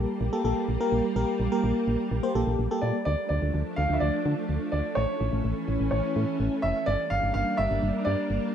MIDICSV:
0, 0, Header, 1, 5, 480
1, 0, Start_track
1, 0, Key_signature, -1, "minor"
1, 0, Tempo, 476190
1, 1170, Time_signature, 4, 2, 24, 8
1, 8617, End_track
2, 0, Start_track
2, 0, Title_t, "Grand piano"
2, 0, Program_c, 0, 0
2, 2837, Note_on_c, 0, 74, 88
2, 3062, Note_off_c, 0, 74, 0
2, 3077, Note_on_c, 0, 74, 95
2, 3300, Note_off_c, 0, 74, 0
2, 3315, Note_on_c, 0, 74, 93
2, 3794, Note_on_c, 0, 77, 95
2, 3817, Note_off_c, 0, 74, 0
2, 3964, Note_on_c, 0, 76, 69
2, 3977, Note_off_c, 0, 77, 0
2, 4035, Note_on_c, 0, 74, 96
2, 4042, Note_off_c, 0, 76, 0
2, 4741, Note_off_c, 0, 74, 0
2, 4756, Note_on_c, 0, 74, 87
2, 4993, Note_on_c, 0, 73, 91
2, 5011, Note_off_c, 0, 74, 0
2, 5921, Note_off_c, 0, 73, 0
2, 5956, Note_on_c, 0, 73, 77
2, 6409, Note_off_c, 0, 73, 0
2, 6676, Note_on_c, 0, 76, 97
2, 6918, Note_on_c, 0, 74, 103
2, 6931, Note_off_c, 0, 76, 0
2, 7158, Note_on_c, 0, 77, 102
2, 7171, Note_off_c, 0, 74, 0
2, 7382, Note_off_c, 0, 77, 0
2, 7397, Note_on_c, 0, 77, 101
2, 7626, Note_off_c, 0, 77, 0
2, 7635, Note_on_c, 0, 76, 100
2, 8112, Note_on_c, 0, 74, 101
2, 8137, Note_off_c, 0, 76, 0
2, 8617, Note_off_c, 0, 74, 0
2, 8617, End_track
3, 0, Start_track
3, 0, Title_t, "FM electric piano"
3, 0, Program_c, 1, 5
3, 0, Note_on_c, 1, 58, 87
3, 0, Note_on_c, 1, 67, 76
3, 0, Note_on_c, 1, 69, 92
3, 125, Note_off_c, 1, 58, 0
3, 125, Note_off_c, 1, 67, 0
3, 126, Note_off_c, 1, 69, 0
3, 330, Note_on_c, 1, 58, 89
3, 330, Note_on_c, 1, 69, 99
3, 331, Note_on_c, 1, 67, 79
3, 416, Note_off_c, 1, 58, 0
3, 416, Note_off_c, 1, 67, 0
3, 416, Note_off_c, 1, 69, 0
3, 450, Note_on_c, 1, 58, 85
3, 451, Note_on_c, 1, 67, 79
3, 451, Note_on_c, 1, 69, 96
3, 708, Note_off_c, 1, 58, 0
3, 708, Note_off_c, 1, 67, 0
3, 708, Note_off_c, 1, 69, 0
3, 811, Note_on_c, 1, 58, 90
3, 812, Note_on_c, 1, 67, 81
3, 812, Note_on_c, 1, 70, 97
3, 1068, Note_off_c, 1, 58, 0
3, 1068, Note_off_c, 1, 70, 0
3, 1069, Note_off_c, 1, 67, 0
3, 1170, Note_on_c, 1, 58, 84
3, 1170, Note_on_c, 1, 67, 80
3, 1171, Note_on_c, 1, 70, 96
3, 1428, Note_off_c, 1, 58, 0
3, 1428, Note_off_c, 1, 67, 0
3, 1428, Note_off_c, 1, 70, 0
3, 1531, Note_on_c, 1, 58, 86
3, 1531, Note_on_c, 1, 70, 96
3, 1532, Note_on_c, 1, 67, 78
3, 2046, Note_off_c, 1, 58, 0
3, 2046, Note_off_c, 1, 67, 0
3, 2046, Note_off_c, 1, 70, 0
3, 2250, Note_on_c, 1, 58, 90
3, 2250, Note_on_c, 1, 72, 93
3, 2251, Note_on_c, 1, 67, 76
3, 2336, Note_off_c, 1, 58, 0
3, 2336, Note_off_c, 1, 67, 0
3, 2336, Note_off_c, 1, 72, 0
3, 2371, Note_on_c, 1, 58, 87
3, 2371, Note_on_c, 1, 67, 79
3, 2371, Note_on_c, 1, 69, 94
3, 2628, Note_off_c, 1, 58, 0
3, 2628, Note_off_c, 1, 67, 0
3, 2628, Note_off_c, 1, 69, 0
3, 2732, Note_on_c, 1, 58, 91
3, 2733, Note_on_c, 1, 67, 80
3, 2733, Note_on_c, 1, 69, 99
3, 2989, Note_off_c, 1, 58, 0
3, 2989, Note_off_c, 1, 67, 0
3, 2989, Note_off_c, 1, 69, 0
3, 8617, End_track
4, 0, Start_track
4, 0, Title_t, "String machine"
4, 0, Program_c, 2, 50
4, 0, Note_on_c, 2, 55, 81
4, 0, Note_on_c, 2, 58, 88
4, 3052, Note_off_c, 2, 55, 0
4, 3052, Note_off_c, 2, 58, 0
4, 3091, Note_on_c, 2, 53, 78
4, 3091, Note_on_c, 2, 62, 86
4, 3092, Note_on_c, 2, 57, 74
4, 4992, Note_off_c, 2, 53, 0
4, 4992, Note_off_c, 2, 62, 0
4, 5011, Note_on_c, 2, 52, 79
4, 5012, Note_on_c, 2, 61, 90
4, 6893, Note_off_c, 2, 57, 0
4, 6911, Note_off_c, 2, 52, 0
4, 6912, Note_off_c, 2, 61, 0
4, 6931, Note_on_c, 2, 55, 78
4, 6931, Note_on_c, 2, 58, 73
4, 6932, Note_on_c, 2, 62, 91
4, 8617, Note_off_c, 2, 55, 0
4, 8617, Note_off_c, 2, 58, 0
4, 8617, Note_off_c, 2, 62, 0
4, 8617, End_track
5, 0, Start_track
5, 0, Title_t, "FM bass"
5, 0, Program_c, 3, 39
5, 209, Note_on_c, 3, 34, 101
5, 300, Note_off_c, 3, 34, 0
5, 450, Note_on_c, 3, 34, 104
5, 541, Note_off_c, 3, 34, 0
5, 691, Note_on_c, 3, 34, 97
5, 781, Note_off_c, 3, 34, 0
5, 930, Note_on_c, 3, 34, 98
5, 1021, Note_off_c, 3, 34, 0
5, 1170, Note_on_c, 3, 34, 99
5, 1261, Note_off_c, 3, 34, 0
5, 1409, Note_on_c, 3, 34, 98
5, 1500, Note_off_c, 3, 34, 0
5, 1652, Note_on_c, 3, 34, 107
5, 1742, Note_off_c, 3, 34, 0
5, 1891, Note_on_c, 3, 34, 101
5, 1981, Note_off_c, 3, 34, 0
5, 2131, Note_on_c, 3, 34, 107
5, 2221, Note_off_c, 3, 34, 0
5, 2371, Note_on_c, 3, 34, 106
5, 2461, Note_off_c, 3, 34, 0
5, 2490, Note_on_c, 3, 34, 102
5, 2581, Note_off_c, 3, 34, 0
5, 2610, Note_on_c, 3, 34, 102
5, 2701, Note_off_c, 3, 34, 0
5, 2850, Note_on_c, 3, 46, 96
5, 2941, Note_off_c, 3, 46, 0
5, 3090, Note_on_c, 3, 38, 112
5, 3181, Note_off_c, 3, 38, 0
5, 3330, Note_on_c, 3, 38, 104
5, 3421, Note_off_c, 3, 38, 0
5, 3450, Note_on_c, 3, 38, 95
5, 3541, Note_off_c, 3, 38, 0
5, 3570, Note_on_c, 3, 38, 101
5, 3661, Note_off_c, 3, 38, 0
5, 3810, Note_on_c, 3, 38, 105
5, 3901, Note_off_c, 3, 38, 0
5, 3929, Note_on_c, 3, 38, 91
5, 4020, Note_off_c, 3, 38, 0
5, 4050, Note_on_c, 3, 38, 102
5, 4141, Note_off_c, 3, 38, 0
5, 4290, Note_on_c, 3, 50, 100
5, 4381, Note_off_c, 3, 50, 0
5, 4529, Note_on_c, 3, 38, 93
5, 4620, Note_off_c, 3, 38, 0
5, 4769, Note_on_c, 3, 38, 83
5, 4860, Note_off_c, 3, 38, 0
5, 5011, Note_on_c, 3, 33, 105
5, 5101, Note_off_c, 3, 33, 0
5, 5250, Note_on_c, 3, 33, 102
5, 5340, Note_off_c, 3, 33, 0
5, 5370, Note_on_c, 3, 33, 98
5, 5461, Note_off_c, 3, 33, 0
5, 5489, Note_on_c, 3, 33, 104
5, 5580, Note_off_c, 3, 33, 0
5, 5729, Note_on_c, 3, 33, 99
5, 5820, Note_off_c, 3, 33, 0
5, 5850, Note_on_c, 3, 33, 95
5, 5941, Note_off_c, 3, 33, 0
5, 5971, Note_on_c, 3, 33, 107
5, 6061, Note_off_c, 3, 33, 0
5, 6211, Note_on_c, 3, 45, 106
5, 6301, Note_off_c, 3, 45, 0
5, 6451, Note_on_c, 3, 33, 116
5, 6541, Note_off_c, 3, 33, 0
5, 6691, Note_on_c, 3, 29, 94
5, 6781, Note_off_c, 3, 29, 0
5, 6932, Note_on_c, 3, 31, 113
5, 7022, Note_off_c, 3, 31, 0
5, 7171, Note_on_c, 3, 31, 98
5, 7261, Note_off_c, 3, 31, 0
5, 7292, Note_on_c, 3, 31, 92
5, 7382, Note_off_c, 3, 31, 0
5, 7411, Note_on_c, 3, 31, 94
5, 7501, Note_off_c, 3, 31, 0
5, 7652, Note_on_c, 3, 31, 92
5, 7742, Note_off_c, 3, 31, 0
5, 7771, Note_on_c, 3, 31, 96
5, 7861, Note_off_c, 3, 31, 0
5, 7891, Note_on_c, 3, 31, 107
5, 7981, Note_off_c, 3, 31, 0
5, 8131, Note_on_c, 3, 43, 102
5, 8222, Note_off_c, 3, 43, 0
5, 8370, Note_on_c, 3, 31, 92
5, 8461, Note_off_c, 3, 31, 0
5, 8617, End_track
0, 0, End_of_file